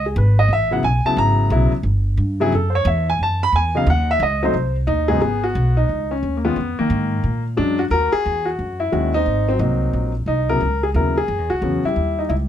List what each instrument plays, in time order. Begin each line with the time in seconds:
Already playing: upright bass C#2
0.06 grand piano G#4
0.16 upright bass G#1, grand piano B4
0.39 grand piano D#5
0.48 upright bass A1
0.53 grand piano E5
0.71 grand piano C#3 F#3 B3 E4 F#5
0.83 upright bass B1, grand piano G#5
1.05 grand piano C#3 F#3 B3 E4 A5, muted upright bass stroke
1.17 upright bass G#1, grand piano A#5
1.50 upright bass B1, grand piano C#3 F#3 B3 E4
1.72 muted upright bass stroke
1.83 upright bass G1
2.17 upright bass G2
2.40 grand piano C#3 F#3 B3 E4 G#4
2.52 upright bass F#2, grand piano A4
2.70 grand piano C5
2.75 grand piano C#5
2.85 upright bass E2, grand piano E5
3.10 grand piano G#5
3.19 upright bass F#2, grand piano A5
3.43 grand piano B5
3.52 upright bass E2, grand piano G#5
3.75 grand piano C#3 F#3 B3 D#4 F5
3.87 upright bass D#2, grand piano F#5
4.11 grand piano E5
4.20 upright bass C#2, grand piano D#5
4.43 grand piano F#3 A3 C4 D#4 C5
4.53 upright bass C2
4.87 upright bass D#2, grand piano D#4
5.08 grand piano G#2 C#3 F#3 B3 D#4 G#4
5.21 upright bass G#1, grand piano B3 G#4
5.44 grand piano F#4
5.55 upright bass B1
5.77 grand piano D#4
5.89 upright bass C#2
6.11 grand piano C#4
6.23 upright bass D#2
6.37 grand piano A#3
6.45 grand piano D#3 G#3 B3 C#4 F4
6.56 upright bass F2
6.79 grand piano D#3 A#3, muted upright bass stroke
6.90 upright bass G#2
7.24 upright bass A#2
7.57 upright bass F#2, grand piano F#3 G#3 C#4 D4
7.79 grand piano F#4
7.90 upright bass D#2, grand piano F#4 A#4
8.12 grand piano G#4, muted upright bass stroke
8.26 upright bass E2
8.45 grand piano F#4
8.59 upright bass F#2
8.80 grand piano E4
8.92 upright bass D#2, grand piano D#3 G#3 C#4 F#4
9.14 grand piano C4 D#4
9.26 upright bass G#1
9.49 grand piano F#3 C4
9.59 upright bass C2, grand piano F#3 A#3 C4 D#4
9.93 upright bass A#1
10.26 upright bass C2, grand piano D#4
10.49 grand piano C#3 F#3 B3 E4 A#4
10.60 upright bass C#2
10.83 grand piano G#4
10.94 upright bass D#2, grand piano C#3 F#3 B3 E4 A#4
11.17 grand piano G#4
11.28 upright bass F#2
11.38 upright bass E2
11.50 upright bass C#2, grand piano F#4
11.62 upright bass E2, grand piano C#3 F#3 B3 C#4
11.84 grand piano G3 E4, muted upright bass stroke
11.96 upright bass D#2
12.19 grand piano D#4
12.29 upright bass C#2, grand piano E4